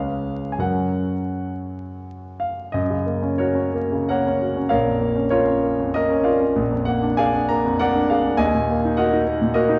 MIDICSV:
0, 0, Header, 1, 2, 480
1, 0, Start_track
1, 0, Key_signature, 6, "major"
1, 0, Tempo, 723764
1, 397, Time_signature, 3, 2, 24, 8
1, 1357, Tempo, 684932
1, 2797, Tempo, 616650
1, 5677, Tempo, 584795
1, 7312, End_track
2, 0, Start_track
2, 0, Title_t, "Grand piano"
2, 0, Program_c, 0, 0
2, 0, Note_on_c, 0, 37, 37
2, 0, Note_on_c, 0, 56, 33
2, 0, Note_on_c, 0, 61, 31
2, 0, Note_on_c, 0, 71, 29
2, 0, Note_on_c, 0, 77, 67
2, 40, Control_c, 0, 64, 127
2, 335, Note_off_c, 0, 77, 0
2, 346, Note_on_c, 0, 80, 42
2, 375, Note_off_c, 0, 37, 0
2, 376, Note_off_c, 0, 56, 0
2, 377, Note_off_c, 0, 61, 0
2, 378, Note_off_c, 0, 71, 0
2, 386, Note_on_c, 0, 42, 33
2, 388, Note_on_c, 0, 54, 29
2, 394, Note_on_c, 0, 70, 29
2, 396, Note_on_c, 0, 78, 57
2, 398, Note_on_c, 0, 61, 29
2, 400, Note_off_c, 0, 80, 0
2, 411, Control_c, 0, 64, 0
2, 549, Control_c, 0, 64, 127
2, 1357, Note_off_c, 0, 78, 0
2, 1603, Note_on_c, 0, 77, 50
2, 1815, Note_off_c, 0, 42, 0
2, 1816, Note_off_c, 0, 54, 0
2, 1819, Note_off_c, 0, 70, 0
2, 1821, Note_off_c, 0, 61, 0
2, 1830, Note_on_c, 0, 75, 61
2, 1843, Note_on_c, 0, 42, 45
2, 1846, Note_off_c, 0, 77, 0
2, 1863, Control_c, 0, 64, 0
2, 1959, Control_c, 0, 64, 127
2, 1959, Note_on_c, 0, 49, 32
2, 2068, Note_on_c, 0, 58, 34
2, 2142, Note_off_c, 0, 49, 0
2, 2183, Note_on_c, 0, 61, 33
2, 2255, Note_off_c, 0, 58, 0
2, 2294, Note_on_c, 0, 73, 63
2, 2295, Note_off_c, 0, 75, 0
2, 2304, Note_on_c, 0, 66, 49
2, 2304, Note_on_c, 0, 70, 46
2, 2373, Note_off_c, 0, 61, 0
2, 2411, Note_on_c, 0, 61, 37
2, 2545, Note_on_c, 0, 58, 36
2, 2621, Note_off_c, 0, 61, 0
2, 2671, Note_on_c, 0, 49, 36
2, 2747, Note_off_c, 0, 58, 0
2, 2769, Note_off_c, 0, 66, 0
2, 2769, Note_off_c, 0, 70, 0
2, 2787, Note_on_c, 0, 78, 65
2, 2789, Note_off_c, 0, 73, 0
2, 2796, Note_on_c, 0, 70, 54
2, 2798, Note_on_c, 0, 58, 40
2, 2800, Note_on_c, 0, 73, 51
2, 2871, Note_off_c, 0, 49, 0
2, 2926, Note_on_c, 0, 61, 42
2, 2998, Note_off_c, 0, 58, 0
2, 3040, Note_on_c, 0, 66, 34
2, 3116, Note_off_c, 0, 61, 0
2, 3153, Note_on_c, 0, 61, 33
2, 3229, Note_off_c, 0, 66, 0
2, 3243, Note_off_c, 0, 42, 0
2, 3246, Note_off_c, 0, 70, 0
2, 3248, Note_off_c, 0, 73, 0
2, 3257, Note_on_c, 0, 77, 72
2, 3265, Note_on_c, 0, 70, 57
2, 3265, Note_on_c, 0, 73, 56
2, 3271, Note_on_c, 0, 34, 48
2, 3272, Note_off_c, 0, 78, 0
2, 3273, Note_off_c, 0, 61, 0
2, 3292, Control_c, 0, 64, 0
2, 3382, Note_on_c, 0, 41, 32
2, 3406, Control_c, 0, 64, 127
2, 3493, Note_on_c, 0, 58, 35
2, 3578, Note_off_c, 0, 41, 0
2, 3618, Note_on_c, 0, 61, 36
2, 3696, Note_off_c, 0, 58, 0
2, 3716, Note_off_c, 0, 70, 0
2, 3716, Note_off_c, 0, 73, 0
2, 3734, Note_on_c, 0, 73, 71
2, 3741, Note_on_c, 0, 70, 49
2, 3743, Note_off_c, 0, 77, 0
2, 3744, Note_on_c, 0, 65, 50
2, 3821, Note_off_c, 0, 61, 0
2, 3859, Note_on_c, 0, 61, 38
2, 3987, Note_on_c, 0, 58, 36
2, 4065, Note_off_c, 0, 61, 0
2, 4114, Note_on_c, 0, 41, 39
2, 4189, Note_off_c, 0, 58, 0
2, 4206, Note_off_c, 0, 70, 0
2, 4208, Note_off_c, 0, 65, 0
2, 4230, Note_on_c, 0, 75, 80
2, 4234, Note_off_c, 0, 73, 0
2, 4236, Note_on_c, 0, 58, 45
2, 4242, Note_on_c, 0, 70, 62
2, 4312, Note_off_c, 0, 41, 0
2, 4355, Note_on_c, 0, 61, 47
2, 4432, Note_off_c, 0, 58, 0
2, 4456, Note_off_c, 0, 70, 0
2, 4459, Note_on_c, 0, 77, 59
2, 4465, Note_on_c, 0, 74, 46
2, 4467, Note_on_c, 0, 70, 47
2, 4468, Note_on_c, 0, 65, 40
2, 4476, Note_off_c, 0, 75, 0
2, 4550, Note_off_c, 0, 61, 0
2, 4588, Note_on_c, 0, 61, 41
2, 4665, Note_off_c, 0, 65, 0
2, 4686, Note_off_c, 0, 34, 0
2, 4710, Note_on_c, 0, 34, 57
2, 4714, Note_off_c, 0, 61, 0
2, 4736, Control_c, 0, 64, 0
2, 4827, Note_on_c, 0, 41, 36
2, 4839, Control_c, 0, 64, 127
2, 4920, Note_off_c, 0, 74, 0
2, 4921, Note_off_c, 0, 70, 0
2, 4939, Note_on_c, 0, 78, 73
2, 4948, Note_off_c, 0, 77, 0
2, 4952, Note_on_c, 0, 58, 40
2, 5026, Note_off_c, 0, 41, 0
2, 5075, Note_on_c, 0, 62, 39
2, 5149, Note_off_c, 0, 58, 0
2, 5188, Note_on_c, 0, 80, 81
2, 5191, Note_off_c, 0, 78, 0
2, 5197, Note_on_c, 0, 74, 64
2, 5200, Note_on_c, 0, 68, 44
2, 5200, Note_on_c, 0, 77, 65
2, 5271, Note_off_c, 0, 62, 0
2, 5315, Note_on_c, 0, 62, 46
2, 5393, Note_off_c, 0, 68, 0
2, 5422, Note_off_c, 0, 74, 0
2, 5424, Note_off_c, 0, 77, 0
2, 5432, Note_on_c, 0, 82, 84
2, 5435, Note_off_c, 0, 80, 0
2, 5441, Note_on_c, 0, 58, 47
2, 5510, Note_off_c, 0, 62, 0
2, 5557, Note_on_c, 0, 41, 47
2, 5630, Note_off_c, 0, 58, 0
2, 5672, Note_on_c, 0, 78, 96
2, 5673, Note_off_c, 0, 82, 0
2, 5679, Note_on_c, 0, 70, 63
2, 5681, Note_on_c, 0, 74, 67
2, 5682, Note_on_c, 0, 58, 50
2, 5750, Note_off_c, 0, 41, 0
2, 5805, Note_on_c, 0, 62, 52
2, 5877, Note_off_c, 0, 58, 0
2, 5907, Note_off_c, 0, 70, 0
2, 5909, Note_off_c, 0, 74, 0
2, 5920, Note_on_c, 0, 77, 63
2, 5921, Note_off_c, 0, 78, 0
2, 5931, Note_on_c, 0, 68, 41
2, 6000, Note_off_c, 0, 62, 0
2, 6043, Note_on_c, 0, 62, 41
2, 6125, Note_off_c, 0, 68, 0
2, 6133, Note_off_c, 0, 34, 0
2, 6147, Note_on_c, 0, 80, 98
2, 6152, Note_on_c, 0, 39, 60
2, 6155, Note_on_c, 0, 75, 75
2, 6169, Note_off_c, 0, 62, 0
2, 6170, Note_off_c, 0, 77, 0
2, 6188, Control_c, 0, 64, 0
2, 6288, Note_on_c, 0, 46, 45
2, 6332, Control_c, 0, 64, 127
2, 6421, Note_on_c, 0, 58, 48
2, 6485, Note_off_c, 0, 46, 0
2, 6538, Note_on_c, 0, 63, 48
2, 6610, Note_off_c, 0, 58, 0
2, 6613, Note_off_c, 0, 75, 0
2, 6636, Note_on_c, 0, 78, 76
2, 6642, Note_off_c, 0, 80, 0
2, 6642, Note_on_c, 0, 75, 61
2, 6647, Note_on_c, 0, 70, 56
2, 6650, Note_on_c, 0, 66, 50
2, 6726, Note_off_c, 0, 63, 0
2, 6769, Note_on_c, 0, 63, 43
2, 6840, Note_off_c, 0, 66, 0
2, 6884, Note_on_c, 0, 58, 42
2, 6959, Note_off_c, 0, 63, 0
2, 7001, Note_on_c, 0, 46, 43
2, 7074, Note_off_c, 0, 58, 0
2, 7085, Note_off_c, 0, 75, 0
2, 7087, Note_off_c, 0, 70, 0
2, 7106, Note_on_c, 0, 75, 80
2, 7113, Note_on_c, 0, 58, 57
2, 7114, Note_off_c, 0, 78, 0
2, 7115, Note_on_c, 0, 66, 62
2, 7116, Note_on_c, 0, 70, 60
2, 7190, Note_off_c, 0, 46, 0
2, 7228, Note_on_c, 0, 63, 57
2, 7304, Note_off_c, 0, 58, 0
2, 7312, Note_off_c, 0, 39, 0
2, 7312, Note_off_c, 0, 63, 0
2, 7312, Note_off_c, 0, 66, 0
2, 7312, Note_off_c, 0, 70, 0
2, 7312, Note_off_c, 0, 75, 0
2, 7312, End_track
0, 0, End_of_file